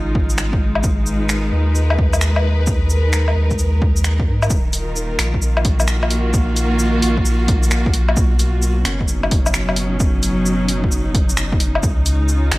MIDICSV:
0, 0, Header, 1, 4, 480
1, 0, Start_track
1, 0, Key_signature, -6, "minor"
1, 0, Tempo, 458015
1, 877, Time_signature, 4, 2, 24, 8
1, 13188, End_track
2, 0, Start_track
2, 0, Title_t, "String section"
2, 0, Program_c, 0, 48
2, 0, Note_on_c, 0, 49, 85
2, 0, Note_on_c, 0, 56, 83
2, 0, Note_on_c, 0, 63, 89
2, 0, Note_on_c, 0, 65, 79
2, 878, Note_off_c, 0, 49, 0
2, 1135, Note_on_c, 0, 71, 90
2, 1398, Note_on_c, 0, 70, 78
2, 2445, Note_off_c, 0, 65, 0
2, 4715, Note_on_c, 0, 51, 77
2, 4718, Note_off_c, 0, 56, 0
2, 4720, Note_off_c, 0, 71, 0
2, 5020, Note_on_c, 0, 65, 88
2, 5187, Note_on_c, 0, 58, 89
2, 5777, Note_off_c, 0, 70, 0
2, 5895, Note_on_c, 0, 66, 85
2, 6286, Note_off_c, 0, 63, 0
2, 8554, Note_on_c, 0, 47, 74
2, 8556, Note_off_c, 0, 51, 0
2, 8966, Note_on_c, 0, 54, 95
2, 9197, Note_off_c, 0, 65, 0
2, 9239, Note_on_c, 0, 61, 79
2, 9256, Note_off_c, 0, 66, 0
2, 9423, Note_on_c, 0, 63, 92
2, 9918, Note_off_c, 0, 58, 0
2, 12395, Note_off_c, 0, 47, 0
2, 12396, Note_on_c, 0, 49, 77
2, 12400, Note_off_c, 0, 54, 0
2, 12655, Note_on_c, 0, 56, 74
2, 12878, Note_on_c, 0, 65, 79
2, 13181, Note_off_c, 0, 61, 0
2, 13188, Note_off_c, 0, 49, 0
2, 13188, Note_off_c, 0, 56, 0
2, 13188, Note_off_c, 0, 63, 0
2, 13188, Note_off_c, 0, 65, 0
2, 13188, End_track
3, 0, Start_track
3, 0, Title_t, "Sub bass"
3, 0, Program_c, 1, 38
3, 0, Note_on_c, 1, 32, 100
3, 864, Note_off_c, 1, 32, 0
3, 877, Note_on_c, 1, 32, 101
3, 1586, Note_off_c, 1, 32, 0
3, 1595, Note_on_c, 1, 39, 97
3, 3505, Note_off_c, 1, 39, 0
3, 3518, Note_on_c, 1, 39, 101
3, 4475, Note_on_c, 1, 44, 101
3, 4491, Note_off_c, 1, 39, 0
3, 4703, Note_off_c, 1, 44, 0
3, 4721, Note_on_c, 1, 27, 102
3, 5428, Note_off_c, 1, 27, 0
3, 5434, Note_on_c, 1, 34, 98
3, 7345, Note_off_c, 1, 34, 0
3, 7358, Note_on_c, 1, 34, 100
3, 8547, Note_off_c, 1, 34, 0
3, 8559, Note_on_c, 1, 35, 105
3, 9267, Note_off_c, 1, 35, 0
3, 9277, Note_on_c, 1, 30, 103
3, 11186, Note_off_c, 1, 30, 0
3, 11199, Note_on_c, 1, 30, 99
3, 12387, Note_off_c, 1, 30, 0
3, 12399, Note_on_c, 1, 37, 102
3, 13107, Note_off_c, 1, 37, 0
3, 13116, Note_on_c, 1, 32, 98
3, 13188, Note_off_c, 1, 32, 0
3, 13188, End_track
4, 0, Start_track
4, 0, Title_t, "Drums"
4, 157, Note_on_c, 9, 36, 97
4, 262, Note_off_c, 9, 36, 0
4, 311, Note_on_c, 9, 82, 50
4, 396, Note_off_c, 9, 82, 0
4, 396, Note_on_c, 9, 26, 96
4, 396, Note_on_c, 9, 82, 49
4, 501, Note_off_c, 9, 26, 0
4, 501, Note_off_c, 9, 82, 0
4, 554, Note_on_c, 9, 36, 100
4, 659, Note_off_c, 9, 36, 0
4, 790, Note_on_c, 9, 77, 63
4, 875, Note_on_c, 9, 82, 56
4, 877, Note_on_c, 9, 36, 105
4, 895, Note_off_c, 9, 77, 0
4, 980, Note_off_c, 9, 82, 0
4, 982, Note_off_c, 9, 36, 0
4, 1115, Note_on_c, 9, 82, 51
4, 1220, Note_off_c, 9, 82, 0
4, 1354, Note_on_c, 9, 26, 102
4, 1354, Note_on_c, 9, 82, 56
4, 1459, Note_off_c, 9, 26, 0
4, 1459, Note_off_c, 9, 82, 0
4, 1837, Note_on_c, 9, 82, 52
4, 1941, Note_off_c, 9, 82, 0
4, 1994, Note_on_c, 9, 77, 65
4, 2080, Note_on_c, 9, 36, 99
4, 2099, Note_off_c, 9, 77, 0
4, 2184, Note_off_c, 9, 36, 0
4, 2234, Note_on_c, 9, 77, 54
4, 2234, Note_on_c, 9, 82, 55
4, 2318, Note_off_c, 9, 82, 0
4, 2318, Note_on_c, 9, 26, 97
4, 2318, Note_on_c, 9, 82, 57
4, 2339, Note_off_c, 9, 77, 0
4, 2423, Note_off_c, 9, 26, 0
4, 2423, Note_off_c, 9, 82, 0
4, 2475, Note_on_c, 9, 77, 59
4, 2580, Note_off_c, 9, 77, 0
4, 2794, Note_on_c, 9, 82, 57
4, 2800, Note_on_c, 9, 36, 106
4, 2899, Note_off_c, 9, 82, 0
4, 2905, Note_off_c, 9, 36, 0
4, 3038, Note_on_c, 9, 82, 54
4, 3143, Note_off_c, 9, 82, 0
4, 3279, Note_on_c, 9, 26, 104
4, 3279, Note_on_c, 9, 82, 58
4, 3384, Note_off_c, 9, 26, 0
4, 3384, Note_off_c, 9, 82, 0
4, 3436, Note_on_c, 9, 77, 39
4, 3540, Note_off_c, 9, 77, 0
4, 3673, Note_on_c, 9, 82, 31
4, 3677, Note_on_c, 9, 36, 60
4, 3758, Note_off_c, 9, 82, 0
4, 3758, Note_on_c, 9, 82, 52
4, 3782, Note_off_c, 9, 36, 0
4, 3863, Note_off_c, 9, 82, 0
4, 4000, Note_on_c, 9, 36, 100
4, 4104, Note_off_c, 9, 36, 0
4, 4153, Note_on_c, 9, 82, 56
4, 4237, Note_off_c, 9, 82, 0
4, 4237, Note_on_c, 9, 26, 104
4, 4237, Note_on_c, 9, 82, 55
4, 4342, Note_off_c, 9, 26, 0
4, 4342, Note_off_c, 9, 82, 0
4, 4396, Note_on_c, 9, 36, 98
4, 4501, Note_off_c, 9, 36, 0
4, 4637, Note_on_c, 9, 77, 70
4, 4637, Note_on_c, 9, 82, 32
4, 4718, Note_off_c, 9, 82, 0
4, 4718, Note_on_c, 9, 82, 59
4, 4719, Note_on_c, 9, 36, 115
4, 4741, Note_off_c, 9, 77, 0
4, 4823, Note_off_c, 9, 82, 0
4, 4824, Note_off_c, 9, 36, 0
4, 4958, Note_on_c, 9, 46, 71
4, 4958, Note_on_c, 9, 82, 60
4, 5063, Note_off_c, 9, 46, 0
4, 5063, Note_off_c, 9, 82, 0
4, 5198, Note_on_c, 9, 82, 62
4, 5303, Note_off_c, 9, 82, 0
4, 5437, Note_on_c, 9, 26, 107
4, 5437, Note_on_c, 9, 46, 76
4, 5541, Note_off_c, 9, 26, 0
4, 5541, Note_off_c, 9, 46, 0
4, 5597, Note_on_c, 9, 36, 61
4, 5680, Note_on_c, 9, 82, 54
4, 5702, Note_off_c, 9, 36, 0
4, 5785, Note_off_c, 9, 82, 0
4, 5835, Note_on_c, 9, 77, 68
4, 5918, Note_on_c, 9, 46, 72
4, 5920, Note_on_c, 9, 36, 106
4, 5940, Note_off_c, 9, 77, 0
4, 6023, Note_off_c, 9, 46, 0
4, 6024, Note_off_c, 9, 36, 0
4, 6075, Note_on_c, 9, 77, 54
4, 6075, Note_on_c, 9, 82, 62
4, 6158, Note_off_c, 9, 82, 0
4, 6158, Note_on_c, 9, 26, 101
4, 6158, Note_on_c, 9, 82, 60
4, 6180, Note_off_c, 9, 77, 0
4, 6263, Note_off_c, 9, 26, 0
4, 6263, Note_off_c, 9, 82, 0
4, 6317, Note_on_c, 9, 77, 66
4, 6398, Note_on_c, 9, 46, 75
4, 6422, Note_off_c, 9, 77, 0
4, 6503, Note_off_c, 9, 46, 0
4, 6640, Note_on_c, 9, 82, 61
4, 6641, Note_on_c, 9, 36, 115
4, 6745, Note_off_c, 9, 82, 0
4, 6746, Note_off_c, 9, 36, 0
4, 6880, Note_on_c, 9, 46, 68
4, 6880, Note_on_c, 9, 82, 57
4, 6985, Note_off_c, 9, 46, 0
4, 6985, Note_off_c, 9, 82, 0
4, 7119, Note_on_c, 9, 82, 62
4, 7224, Note_off_c, 9, 82, 0
4, 7361, Note_on_c, 9, 46, 73
4, 7466, Note_off_c, 9, 46, 0
4, 7518, Note_on_c, 9, 36, 65
4, 7601, Note_on_c, 9, 82, 57
4, 7623, Note_off_c, 9, 36, 0
4, 7706, Note_off_c, 9, 82, 0
4, 7840, Note_on_c, 9, 46, 71
4, 7841, Note_on_c, 9, 36, 116
4, 7944, Note_off_c, 9, 46, 0
4, 7946, Note_off_c, 9, 36, 0
4, 7997, Note_on_c, 9, 82, 59
4, 8079, Note_off_c, 9, 82, 0
4, 8079, Note_on_c, 9, 26, 112
4, 8079, Note_on_c, 9, 82, 58
4, 8184, Note_off_c, 9, 26, 0
4, 8184, Note_off_c, 9, 82, 0
4, 8238, Note_on_c, 9, 36, 108
4, 8316, Note_on_c, 9, 46, 74
4, 8343, Note_off_c, 9, 36, 0
4, 8421, Note_off_c, 9, 46, 0
4, 8473, Note_on_c, 9, 77, 66
4, 8556, Note_on_c, 9, 82, 60
4, 8560, Note_on_c, 9, 36, 123
4, 8578, Note_off_c, 9, 77, 0
4, 8661, Note_off_c, 9, 82, 0
4, 8665, Note_off_c, 9, 36, 0
4, 8797, Note_on_c, 9, 46, 69
4, 8797, Note_on_c, 9, 82, 55
4, 8902, Note_off_c, 9, 46, 0
4, 8902, Note_off_c, 9, 82, 0
4, 9036, Note_on_c, 9, 82, 59
4, 9141, Note_off_c, 9, 82, 0
4, 9275, Note_on_c, 9, 26, 116
4, 9275, Note_on_c, 9, 46, 73
4, 9380, Note_off_c, 9, 26, 0
4, 9380, Note_off_c, 9, 46, 0
4, 9439, Note_on_c, 9, 36, 64
4, 9516, Note_on_c, 9, 82, 59
4, 9544, Note_off_c, 9, 36, 0
4, 9621, Note_off_c, 9, 82, 0
4, 9676, Note_on_c, 9, 77, 64
4, 9759, Note_on_c, 9, 46, 68
4, 9761, Note_on_c, 9, 36, 115
4, 9781, Note_off_c, 9, 77, 0
4, 9864, Note_off_c, 9, 46, 0
4, 9866, Note_off_c, 9, 36, 0
4, 9916, Note_on_c, 9, 77, 50
4, 9916, Note_on_c, 9, 82, 59
4, 9997, Note_off_c, 9, 82, 0
4, 9997, Note_on_c, 9, 26, 113
4, 9997, Note_on_c, 9, 82, 57
4, 10021, Note_off_c, 9, 77, 0
4, 10101, Note_off_c, 9, 26, 0
4, 10101, Note_off_c, 9, 82, 0
4, 10151, Note_on_c, 9, 77, 59
4, 10232, Note_on_c, 9, 46, 70
4, 10256, Note_off_c, 9, 77, 0
4, 10337, Note_off_c, 9, 46, 0
4, 10478, Note_on_c, 9, 82, 57
4, 10481, Note_on_c, 9, 36, 118
4, 10583, Note_off_c, 9, 82, 0
4, 10586, Note_off_c, 9, 36, 0
4, 10719, Note_on_c, 9, 46, 71
4, 10719, Note_on_c, 9, 82, 54
4, 10824, Note_off_c, 9, 46, 0
4, 10824, Note_off_c, 9, 82, 0
4, 10960, Note_on_c, 9, 82, 58
4, 11065, Note_off_c, 9, 82, 0
4, 11198, Note_on_c, 9, 46, 76
4, 11302, Note_off_c, 9, 46, 0
4, 11357, Note_on_c, 9, 36, 66
4, 11441, Note_on_c, 9, 82, 53
4, 11462, Note_off_c, 9, 36, 0
4, 11545, Note_off_c, 9, 82, 0
4, 11679, Note_on_c, 9, 36, 110
4, 11680, Note_on_c, 9, 46, 69
4, 11784, Note_off_c, 9, 36, 0
4, 11785, Note_off_c, 9, 46, 0
4, 11834, Note_on_c, 9, 82, 55
4, 11916, Note_off_c, 9, 82, 0
4, 11916, Note_on_c, 9, 26, 107
4, 11916, Note_on_c, 9, 82, 55
4, 12021, Note_off_c, 9, 26, 0
4, 12021, Note_off_c, 9, 82, 0
4, 12076, Note_on_c, 9, 36, 106
4, 12157, Note_on_c, 9, 46, 72
4, 12181, Note_off_c, 9, 36, 0
4, 12262, Note_off_c, 9, 46, 0
4, 12317, Note_on_c, 9, 77, 63
4, 12398, Note_on_c, 9, 82, 54
4, 12400, Note_on_c, 9, 36, 114
4, 12421, Note_off_c, 9, 77, 0
4, 12503, Note_off_c, 9, 82, 0
4, 12504, Note_off_c, 9, 36, 0
4, 12638, Note_on_c, 9, 46, 71
4, 12638, Note_on_c, 9, 82, 52
4, 12742, Note_off_c, 9, 46, 0
4, 12742, Note_off_c, 9, 82, 0
4, 12875, Note_on_c, 9, 82, 54
4, 12979, Note_off_c, 9, 82, 0
4, 13115, Note_on_c, 9, 26, 114
4, 13115, Note_on_c, 9, 46, 74
4, 13188, Note_off_c, 9, 26, 0
4, 13188, Note_off_c, 9, 46, 0
4, 13188, End_track
0, 0, End_of_file